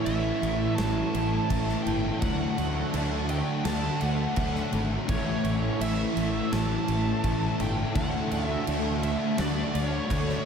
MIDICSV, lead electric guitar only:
0, 0, Header, 1, 2, 480
1, 0, Start_track
1, 0, Tempo, 716846
1, 1485, Time_signature, 4, 2, 24, 8
1, 6998, End_track
2, 0, Start_track
2, 0, Title_t, "Lead electric guitar"
2, 0, Program_c, 0, 29
2, 35, Note_on_c, 0, 76, 94
2, 502, Note_on_c, 0, 81, 117
2, 535, Note_off_c, 0, 76, 0
2, 1207, Note_off_c, 0, 81, 0
2, 1225, Note_on_c, 0, 79, 95
2, 1471, Note_off_c, 0, 79, 0
2, 1474, Note_on_c, 0, 78, 83
2, 1933, Note_off_c, 0, 78, 0
2, 2212, Note_on_c, 0, 79, 89
2, 2442, Note_on_c, 0, 81, 114
2, 2456, Note_off_c, 0, 79, 0
2, 2681, Note_on_c, 0, 78, 92
2, 2691, Note_off_c, 0, 81, 0
2, 3136, Note_off_c, 0, 78, 0
2, 3413, Note_on_c, 0, 73, 77
2, 3892, Note_on_c, 0, 76, 88
2, 3903, Note_off_c, 0, 73, 0
2, 4367, Note_on_c, 0, 81, 112
2, 4383, Note_off_c, 0, 76, 0
2, 5097, Note_on_c, 0, 79, 95
2, 5107, Note_off_c, 0, 81, 0
2, 5329, Note_off_c, 0, 79, 0
2, 5331, Note_on_c, 0, 78, 84
2, 5666, Note_off_c, 0, 78, 0
2, 5666, Note_on_c, 0, 76, 84
2, 5781, Note_off_c, 0, 76, 0
2, 6051, Note_on_c, 0, 76, 104
2, 6290, Note_on_c, 0, 74, 115
2, 6295, Note_off_c, 0, 76, 0
2, 6525, Note_off_c, 0, 74, 0
2, 6527, Note_on_c, 0, 73, 92
2, 6979, Note_off_c, 0, 73, 0
2, 6998, End_track
0, 0, End_of_file